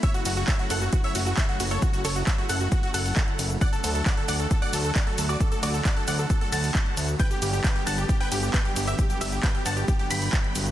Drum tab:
RD |--x---x---x---x-|--x---x---x---x-|--x---x---x---x-|--x---x---x---x-|
HH |xxoxxxoxxxoxxxox|xxoxxxoxxxooxxox|xxo-xxoxxxoxxxox|xxoxxxoxxxooxxo-|
SH |xxxxx-xxx-xxx-xx|xxxxx-xxx-xxx-xx|xxxxx-xxx-xxx-xx|xxxxx-xxx-xxx-xx|
CP |----x-------x---|----x-------x---|----x-------x---|----x-------x---|
BD |o---o---o---o---|o---o---o---o---|o---o---o---o---|o---o---o---o---|

RD |--x---x---x---x-|--x---x---x---x-|
HH |xxoxxxoxxxoxxxo-|xxoxxxoxxxooxxox|
SH |xxxxx-xxx-xxx-xx|xxxxx-xxx-xxx-xx|
CP |----x-------x---|----x-------x---|
BD |o---o---o---o---|o---o---o---o---|